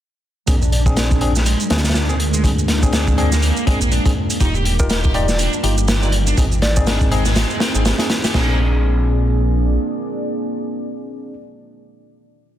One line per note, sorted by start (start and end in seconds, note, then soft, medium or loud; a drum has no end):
0.47 1.55 A#1 medium
0.47 4.37 G#3 medium
0.47 0.61 A#3 medium
0.47 6.34 A#3 medium
0.47 0.55 C4 medium
0.47 0.55 D4 medium
0.47 4.37 D4 medium
0.47 6.34 F4 medium
0.47 0.55 G#4 medium
0.47 6.34 A#4 medium
0.47 kick loud
0.47 closed hi-hat medium
0.47 shaker medium
0.62 0.70 D4 medium
0.62 shaker soft
0.72 0.79 D4 medium
0.72 closed hi-hat medium
0.86 1.19 C4 medium
0.86 1.19 D4 medium
0.86 1.19 G#4 loud
0.86 kick medium
0.86 shaker medium
0.97 1.10 D4 medium
0.97 snare loud
0.97 closed hi-hat medium
0.97 shaker medium
1.11 1.20 D4 medium
1.11 kick medium
1.11 shaker soft
1.21 1.32 C4 medium
1.21 1.28 D4 medium
1.21 1.32 D4 medium
1.21 1.32 G#4 loud
1.21 closed hi-hat medium
1.35 snare soft
1.35 shaker medium
1.46 1.59 G#3 loud
1.46 closed hi-hat medium
1.46 shaker medium
1.60 shaker soft
1.70 3.52 D2 loud
1.70 1.82 C4 medium
1.70 1.77 D4 medium
1.70 1.82 D4 medium
1.70 1.82 G#4 loud
1.70 snare medium
1.70 closed hi-hat medium
1.77 snare medium
1.77 closed hi-hat medium
1.84 snare medium
1.84 closed hi-hat medium
1.84 shaker medium
1.89 snare medium
1.89 closed hi-hat medium
1.94 2.06 D4 medium
1.94 snare loud
1.94 closed hi-hat medium
1.94 shaker soft
2.09 2.14 C4 medium
2.09 2.14 D4 medium
2.09 2.19 G#4 loud
2.09 2.14 G#4 medium
2.09 shaker soft
2.20 closed hi-hat medium
2.34 2.42 G#3 medium
2.34 shaker medium
2.44 2.51 C4 medium
2.44 2.51 D4 medium
2.44 2.51 G#4 medium
2.44 kick medium
2.44 closed hi-hat medium
2.44 shaker medium
2.59 shaker soft
2.68 snare medium
2.68 closed hi-hat medium
2.83 3.15 C4 medium
2.83 3.15 D4 medium
2.83 3.15 G#4 loud
2.83 kick medium
2.83 shaker medium
2.93 3.04 D4 medium
2.93 snare loud
2.93 closed hi-hat medium
2.93 shaker medium
3.08 kick medium
3.08 shaker soft
3.18 3.66 A#3 medium
3.18 3.29 C4 medium
3.18 3.29 D4 medium
3.18 3.29 G#4 loud
3.18 closed hi-hat medium
3.32 snare soft
3.32 shaker medium
3.42 closed hi-hat medium
3.42 shaker medium
3.57 shaker soft
3.67 3.80 G#3 medium
3.67 3.78 C4 medium
3.67 3.78 D4 medium
3.67 3.78 G#4 loud
3.67 kick medium
3.67 closed hi-hat medium
3.81 3.99 A#1 medium
3.81 3.91 A#3 medium
3.81 shaker medium
3.91 4.03 D4 medium
3.91 closed hi-hat medium
3.91 shaker medium
4.06 4.11 C4 medium
4.06 4.11 D4 medium
4.06 4.11 G#4 medium
4.06 kick medium
4.06 closed hi-hat medium
4.06 shaker soft
4.30 closed hi-hat medium
4.30 shaker medium
4.40 5.48 D#1 loud
4.40 8.31 D#3 medium
4.40 6.36 G3 medium
4.40 4.54 D#4 medium
4.40 4.48 D#4 medium
4.40 4.48 F4 medium
4.40 4.48 G4 medium
4.40 kick loud
4.40 closed hi-hat medium
4.40 shaker medium
4.55 4.63 G4 loud
4.55 shaker soft
4.65 4.72 G4 medium
4.65 closed hi-hat medium
4.79 5.12 D#4 medium
4.79 5.12 F4 medium
4.79 5.12 G4 loud
4.79 4.86 A#4 medium
4.79 kick medium
4.79 shaker medium
4.90 5.03 G4 medium
4.90 4.99 A#4 medium
4.90 snare loud
4.90 closed hi-hat medium
4.90 shaker medium
5.04 5.13 G4 medium
5.04 kick loud
5.04 shaker soft
5.14 5.26 D#4 loud
5.14 5.26 F4 medium
5.14 5.21 G4 loud
5.14 5.26 G4 loud
5.14 5.37 D5 medium
5.14 closed hi-hat medium
5.28 snare soft
5.28 shaker medium
5.39 5.53 D4 loud
5.39 closed hi-hat medium
5.39 shaker medium
5.53 shaker soft
5.64 6.34 G1 loud
5.64 5.75 D#4 medium
5.64 5.75 F4 medium
5.64 5.75 G4 loud
5.64 5.71 G4 medium
5.64 closed hi-hat medium
5.78 shaker medium
5.88 6.00 G4 medium
5.88 snare loud
5.88 closed hi-hat medium
5.88 shaker medium
6.02 6.08 D#4 medium
6.02 6.08 F4 medium
6.02 6.08 G4 medium
6.02 6.13 D5 loud
6.02 shaker soft
6.12 closed hi-hat medium
6.27 6.35 D4 medium
6.27 shaker medium
6.37 7.45 G#1 loud
6.37 8.32 C4 medium
6.37 6.45 C4 medium
6.37 6.45 D#4 medium
6.37 8.33 G#4 medium
6.37 6.45 G#4 medium
6.37 kick medium
6.37 closed hi-hat medium
6.37 shaker medium
6.52 shaker soft
6.62 6.71 D5 medium
6.62 snare medium
6.62 closed hi-hat medium
6.76 7.09 C4 loud
6.76 7.09 D#4 medium
6.76 7.09 G#4 loud
6.76 6.83 D5 medium
6.76 kick loud
6.76 shaker medium
6.87 6.98 D4 medium
6.87 snare loud
6.87 closed hi-hat medium
6.87 shaker medium
7.01 kick loud
7.01 shaker soft
7.11 7.60 G#3 medium
7.11 7.23 C4 loud
7.11 7.23 D#4 medium
7.11 7.23 G#4 loud
7.11 closed hi-hat medium
7.25 snare soft
7.25 shaker medium
7.36 snare loud
7.36 closed hi-hat medium
7.36 shaker medium
7.50 shaker soft
7.60 7.72 C4 loud
7.60 snare medium
7.60 closed hi-hat medium
7.75 7.93 G#1 medium
7.75 7.96 C4 medium
7.75 7.83 C4 medium
7.75 7.96 D#4 medium
7.75 7.96 G#4 medium
7.75 shaker medium
7.85 7.92 G4 medium
7.85 snare loud
7.85 closed hi-hat medium
7.85 shaker soft
7.99 8.08 C4 medium
7.99 8.04 D4 medium
7.99 8.08 D#4 medium
7.99 8.08 G#4 medium
7.99 snare loud
7.99 closed hi-hat medium
7.99 shaker soft
8.10 snare loud
8.10 closed hi-hat medium
8.24 8.32 G4 loud
8.24 snare medium
8.24 closed hi-hat medium
8.24 shaker medium
8.34 9.78 A#1 medium
8.34 8.57 A#3 medium
8.34 11.34 A#3 medium
8.34 11.33 C4 medium
8.34 11.33 D4 medium
8.34 11.34 D4 medium
8.34 11.34 F4 medium
8.34 11.33 G#4 medium
8.34 11.33 D5 medium
8.34 kick medium
8.34 snare loud
8.34 china medium